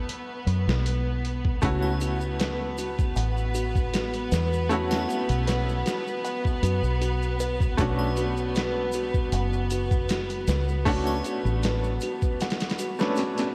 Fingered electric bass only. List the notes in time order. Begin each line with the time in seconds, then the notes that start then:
0.47 F#2
0.67 B1
1.63 C#2
3.16 A1
4.32 E2
5.29 B1
6.63 F#2
6.83 B1
7.79 B1
9.32 F#1
10.47 C#2
11.45 A1